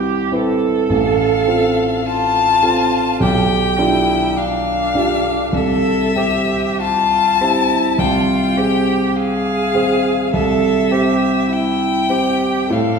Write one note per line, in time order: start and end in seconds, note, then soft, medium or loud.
0.00 0.92 C2 medium
0.00 0.28 C4 soft
0.00 0.28 E4 soft
0.00 0.36 G4 medium
0.00 0.28 B4 soft
0.00 0.32 G5 medium
0.32 0.86 C4 soft
0.32 0.86 E4 soft
0.32 2.06 A4 medium
0.32 0.86 B4 soft
0.90 1.46 A1 medium
0.90 2.07 F5 medium
1.47 2.59 C4 soft
1.47 2.59 F4 soft
1.47 2.60 A4 medium
2.06 3.24 F4 medium
2.06 3.21 A5 medium
2.63 3.17 C4 soft
2.63 3.17 F4 soft
2.63 3.17 A4 soft
3.20 3.77 B1 medium
3.20 3.81 G4 medium
3.20 4.39 G5 medium
3.79 4.91 D4 soft
3.79 4.38 E4 medium
3.79 4.91 F4 soft
3.79 4.91 G4 soft
4.36 5.53 D4 medium
4.36 5.56 F5 medium
4.95 5.50 D4 soft
4.95 5.50 F4 soft
4.95 5.51 G4 soft
5.53 6.14 C2 medium
5.53 6.19 A4 medium
5.53 6.80 E5 medium
6.16 7.36 C4 soft
6.16 7.36 G4 soft
6.16 6.82 G4 medium
6.16 7.36 C5 soft
6.81 7.42 F4 medium
6.81 8.01 A5 loud
7.41 7.95 C4 soft
7.41 8.00 E4 medium
7.41 7.95 G4 soft
7.41 7.95 C5 soft
7.98 8.55 C2 medium
7.98 8.58 F4 medium
7.98 9.17 G5 medium
8.57 9.71 C4 soft
8.57 9.18 G4 medium
8.57 9.71 G#4 soft
8.57 9.71 C5 soft
9.16 10.33 G#4 medium
9.16 10.33 F5 medium
9.74 10.29 C4 soft
9.74 10.29 G#4 soft
9.74 10.29 C5 soft
10.33 10.90 C2 medium
10.33 10.93 A4 medium
10.33 11.54 E5 medium
10.91 12.06 C4 soft
10.91 11.50 G4 medium
10.91 12.06 G4 soft
10.91 12.06 C5 soft
11.50 12.12 E4 medium
11.50 12.73 G5 medium
12.09 12.67 C4 soft
12.09 12.67 G4 soft
12.09 12.70 G4 medium
12.09 12.67 C5 soft
12.70 12.99 A2 medium
12.70 12.99 A4 medium
12.70 12.99 F5 medium